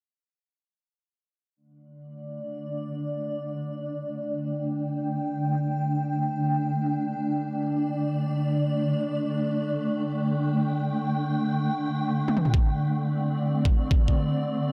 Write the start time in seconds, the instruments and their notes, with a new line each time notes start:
1.57 synth drone D3 A3 D4 D5
4.31 synth drone G5
7.05 synth drone D5
9.80 synth drone G5
12.28 high tom
12.37 mid tom
12.45 mid tom
12.54 synth drone C4 D5, kick
13.65 kick
13.91 kick
14.08 kick